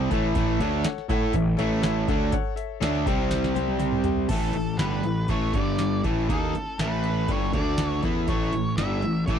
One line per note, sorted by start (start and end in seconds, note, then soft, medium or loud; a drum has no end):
0.00 0.11 C3 loud
0.00 0.11 G3 medium
0.00 0.11 C4 loud
0.00 0.32 A5 medium
0.11 0.34 A1 loud
0.11 0.35 A2 medium
0.11 0.35 E3 loud
0.11 0.36 A3 loud
0.11 0.50 A4 medium
0.11 0.50 C#5 medium
0.11 0.50 E5 loud
0.11 kick loud
0.11 closed hi-hat medium
0.35 0.58 A1 medium
0.35 0.60 A2 medium
0.35 0.60 E3 loud
0.35 0.60 A3 loud
0.35 kick loud
0.35 closed hi-hat medium
0.60 0.83 D2 medium
0.60 0.84 D3 medium
0.60 0.84 A3 loud
0.60 0.85 D4 loud
0.60 0.80 A4 medium
0.60 0.80 C#5 medium
0.60 0.80 E5 medium
0.60 closed hi-hat medium
0.83 1.04 A4 medium
0.83 1.04 C#5 medium
0.83 1.04 F#5 loud
0.83 muted picked electric bass stroke soft
0.83 muted overdriven electric guitar stroke medium
0.83 snare loud
0.83 closed hi-hat medium
0.98 snare soft
1.08 1.32 A2 loud
1.08 1.34 A3 medium
1.08 1.34 E4 medium
1.08 1.28 A4 medium
1.08 1.34 A4 loud
1.08 1.29 C#5 medium
1.08 1.29 F#5 medium
1.08 kick loud
1.08 closed hi-hat medium
1.33 1.57 A1 medium
1.33 1.54 A2 medium
1.33 1.55 E3 medium
1.33 1.53 A4 medium
1.33 1.54 C#5 medium
1.33 1.54 E5 medium
1.33 kick medium
1.33 closed hi-hat medium
1.57 2.05 A1 medium
1.57 2.08 A2 loud
1.57 2.07 E3 loud
1.57 2.08 A3 loud
1.57 1.77 A4 loud
1.57 1.78 C#5 medium
1.57 1.78 E5 loud
1.57 closed hi-hat medium
1.81 2.02 A4 loud
1.81 2.02 C#5 loud
1.81 2.02 E5 loud
1.81 snare loud
1.81 closed hi-hat medium
2.07 2.31 D2 medium
2.07 2.32 D3 medium
2.07 2.33 A3 medium
2.07 2.32 D4 loud
2.07 2.27 A4 medium
2.07 2.28 C#5 medium
2.07 2.28 E5 medium
2.07 kick loud
2.07 closed hi-hat medium
2.32 2.52 A4 loud
2.32 2.52 C#5 loud
2.32 2.53 F#5 loud
2.32 kick loud
2.32 closed hi-hat loud
2.56 2.76 A4 medium
2.56 2.76 C#5 medium
2.56 2.76 E5 loud
2.56 closed hi-hat medium
2.80 3.05 D2 loud
2.80 3.05 D3 medium
2.80 3.06 A3 medium
2.80 3.06 D4 loud
2.80 3.01 A4 medium
2.80 3.01 C#5 medium
2.80 3.01 E5 loud
2.80 snare loud
2.80 closed hi-hat loud
2.95 snare soft
3.05 4.26 C2 medium
3.05 4.30 C3 medium
3.05 4.30 G3 medium
3.05 4.30 C4 loud
3.05 3.46 G4 medium
3.05 3.46 C5 medium
3.05 3.46 G5 loud
3.05 kick loud
3.05 closed hi-hat medium
3.31 snare medium
3.31 closed hi-hat loud
3.44 snare medium
3.54 3.75 G4 loud
3.54 3.75 C5 loud
3.54 3.75 G5 loud
3.54 closed hi-hat medium
3.54 high tom medium
3.68 high tom medium
3.79 4.00 G4 medium
3.79 4.00 C5 loud
3.79 4.00 G5 loud
3.79 closed hi-hat medium
3.79 mid tom medium
3.92 mid tom medium
4.04 4.25 G4 medium
4.04 4.25 C5 medium
4.04 4.25 G5 loud
4.04 closed hi-hat medium
4.04 floor tom medium
4.16 floor tom medium
4.29 4.53 A1 medium
4.29 4.55 A2 medium
4.29 4.54 A2 medium
4.29 4.55 E3 medium
4.29 4.54 E3 medium
4.29 4.55 A3 medium
4.29 4.56 A3 medium
4.29 4.55 C#4 medium
4.29 4.54 E4 medium
4.29 4.76 A4 medium
4.29 4.54 A4 medium
4.29 kick loud
4.29 closed hi-hat medium
4.29 crash medium
4.53 4.78 A1 medium
4.53 4.75 A2 medium
4.53 4.75 E3 medium
4.53 4.81 C#4 soft
4.53 4.80 E4 soft
4.53 4.80 A4 soft
4.53 closed hi-hat medium
4.57 4.81 A3 soft
4.78 5.02 G1 loud
4.78 5.04 G2 medium
4.78 5.05 A2 medium
4.78 5.04 D3 medium
4.78 5.06 E3 medium
4.78 5.04 G3 medium
4.78 5.06 A3 medium
4.78 5.06 C#4 medium
4.78 5.04 E4 medium
4.78 5.04 A4 medium
4.78 5.31 B4 medium
4.78 snare loud
4.78 closed hi-hat medium
5.02 5.26 A1 medium
5.02 5.25 A2 medium
5.02 5.25 E3 medium
5.02 5.29 E4 soft
5.02 5.30 A4 medium
5.02 closed hi-hat medium
5.07 5.28 A3 soft
5.07 5.29 C#4 soft
5.28 5.52 A1 medium
5.28 5.54 A2 medium
5.28 5.54 E3 medium
5.28 5.54 A3 soft
5.28 5.54 A3 medium
5.28 5.55 C#4 medium
5.28 5.54 A4 medium
5.28 5.53 C#5 medium
5.28 kick medium
5.28 closed hi-hat medium
5.54 6.01 G1 medium
5.54 6.03 G2 medium
5.54 6.03 D3 loud
5.54 6.03 G3 medium
5.54 5.78 D4 soft
5.54 5.79 G4 medium
5.54 6.01 D5 medium
5.54 5.79 D5 medium
5.54 kick loud
5.54 closed hi-hat medium
5.79 6.04 G3 medium
5.79 6.04 D4 medium
5.79 6.05 G4 medium
5.79 snare medium
5.79 closed hi-hat medium
6.03 6.27 A1 medium
6.03 6.28 A2 medium
6.03 6.55 A2 medium
6.03 6.28 E3 medium
6.03 6.28 A3 medium
6.03 6.80 A3 medium
6.03 6.53 C#4 medium
6.03 6.53 E4 medium
6.03 6.53 A4 medium
6.03 kick loud
6.03 closed hi-hat medium
6.29 6.52 D#2 medium
6.29 6.53 D#3 medium
6.29 6.53 A#3 medium
6.29 6.53 D#4 loud
6.29 kick loud
6.29 closed hi-hat medium
6.33 6.81 A4 medium
6.53 6.79 C#4 soft
6.53 6.79 E4 soft
6.53 6.79 A4 medium
6.53 muted picked electric bass stroke soft
6.53 muted overdriven electric guitar stroke medium
6.53 closed hi-hat medium
6.79 7.25 A1 loud
6.79 7.04 A2 medium
6.79 7.29 A2 medium
6.79 7.29 E3 medium
6.79 7.29 A3 loud
6.79 7.05 A3 medium
6.79 7.05 C#4 medium
6.79 7.05 E4 medium
6.79 7.05 A4 medium
6.79 7.32 B4 medium
6.79 snare loud
6.79 closed hi-hat medium
7.04 7.30 E4 medium
7.04 7.30 A4 soft
7.04 closed hi-hat medium
7.08 7.29 C#4 soft
7.28 7.52 G1 medium
7.28 7.53 G2 medium
7.28 7.52 D3 medium
7.28 7.53 G3 loud
7.28 7.54 A3 medium
7.28 7.54 C#4 medium
7.28 7.55 E4 medium
7.28 7.53 C#5 medium
7.28 kick medium
7.28 closed hi-hat medium
7.32 7.55 A4 medium
7.53 8.00 D2 medium
7.53 8.03 D3 medium
7.53 8.03 A3 medium
7.53 8.03 D4 loud
7.53 7.79 D4 soft
7.53 7.80 A4 medium
7.53 7.88 D5 medium
7.53 kick medium
7.53 closed hi-hat medium
7.59 7.79 A3 soft
7.78 8.04 D3 medium
7.78 8.04 A3 medium
7.78 8.03 D4 medium
7.78 8.03 A4 medium
7.78 snare medium
7.78 closed hi-hat medium
7.88 8.00 C#5 medium
8.03 8.27 E2 medium
8.03 8.55 A2 soft
8.03 8.28 E3 loud
8.03 8.54 A3 medium
8.03 8.28 B3 medium
8.03 8.54 C#4 medium
8.03 8.54 E4 medium
8.03 8.28 E4 medium
8.03 8.54 A4 medium
8.03 kick loud
8.03 snare soft
8.03 closed hi-hat medium
8.27 8.51 A1 medium
8.27 8.52 A2 medium
8.27 8.53 E3 medium
8.27 8.53 A3 medium
8.27 8.77 C#5 loud
8.27 kick loud
8.27 closed hi-hat medium
8.53 8.77 A1 medium
8.53 8.73 A2 medium
8.53 8.74 E3 medium
8.53 8.80 A4 medium
8.53 closed hi-hat medium
8.57 8.79 C#4 soft
8.57 8.80 E4 soft
8.77 9.02 G1 loud
8.77 9.03 G2 medium
8.77 9.04 A2 medium
8.77 9.03 D3 medium
8.77 9.03 G3 loud
8.77 9.04 A3 medium
8.77 9.04 C#4 medium
8.77 9.24 E5 loud
8.77 snare loud
8.77 closed hi-hat medium
8.81 9.03 E4 medium
8.81 9.01 A4 medium
9.02 9.26 A1 medium
9.02 9.24 A2 medium
9.02 9.25 E3 medium
9.02 9.27 C#4 soft
9.02 9.28 A4 medium
9.02 closed hi-hat medium
9.26 9.39 A1 medium
9.26 9.39 A2 medium
9.26 9.39 A3 medium
9.26 9.39 C#4 medium
9.26 9.39 E4 medium
9.26 9.39 A4 medium
9.26 9.39 D5 loud
9.26 kick loud
9.26 closed hi-hat medium
9.30 9.39 E3 medium
9.30 9.39 A3 loud